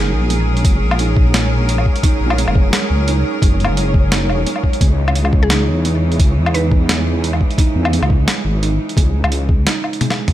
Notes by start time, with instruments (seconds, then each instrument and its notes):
Already playing: wobble bass F#1, cello section F#3 C#4 G#4 A#4, felt piano D#4, synth pluck G#4, synth texture C#5
0.13 wobble bass A#1
0.30 felt piano G#3, closed hi-hat
0.57 closed hi-hat
0.64 wobble bass F#1, kick, closed hi-hat
0.82 wobble bass A#1
0.91 low woodblock
0.99 felt piano D#4, closed hi-hat
1.17 kick
1.34 felt piano G#3, snare, closed hi-hat
1.69 closed hi-hat
1.78 low woodblock
1.86 kick
1.96 closed hi-hat
2.03 felt piano D#4, kick, closed hi-hat
2.21 wobble bass A#1
2.30 low woodblock
2.38 felt piano G#3, closed hi-hat
2.48 wobble bass F#1, low woodblock
2.55 kick
2.73 snare, closed hi-hat
2.90 wobble bass C#2
3.08 felt piano D#4, closed hi-hat
3.42 wobble bass F#1, felt piano G#3, kick, closed hi-hat
3.60 closed hi-hat
3.65 low woodblock
3.69 wobble bass F#1
3.77 closed hi-hat
3.94 kick
4.12 felt piano D#4, snare, closed hi-hat
4.29 wobble bass E1, low woodblock
4.46 felt piano G#3, closed hi-hat
4.56 low woodblock
4.64 kick
4.73 closed hi-hat
4.81 wobble bass C#2, cello section C#3 E3 G#3 D#4, felt piano G#3, kick, closed hi-hat
5.08 low woodblock
5.15 closed hi-hat
5.25 low woodblock
5.33 kick
5.43 synth pluck G#4
5.50 felt piano D#4, snare, closed hi-hat
5.68 wobble bass E2
5.85 felt piano G#3, closed hi-hat
6.12 closed hi-hat
6.19 wobble bass C#2, kick, closed hi-hat
6.37 wobble bass E2
6.46 low woodblock
6.54 felt piano D#4, synth pluck B4, closed hi-hat
6.72 kick
6.89 felt piano G#3, snare, closed hi-hat
7.24 closed hi-hat
7.33 low woodblock
7.41 kick
7.51 closed hi-hat
7.58 felt piano D#4, kick, closed hi-hat
7.76 wobble bass E2
7.85 low woodblock
7.93 felt piano G#3, closed hi-hat
8.02 wobble bass C#2, low woodblock
8.10 kick
8.28 snare, closed hi-hat
8.45 wobble bass G#1
8.62 felt piano D#4, closed hi-hat
8.89 closed hi-hat
8.97 wobble bass C#2, felt piano G#3, kick, closed hi-hat
9.24 wobble bass C#2, low woodblock
9.32 closed hi-hat
9.49 kick
9.66 felt piano D#4, snare, closed hi-hat
9.84 low woodblock
9.93 closed hi-hat
10.01 felt piano G#3, closed hi-hat, high tom
10.10 snare, low woodblock
10.28 closed hi-hat, mid tom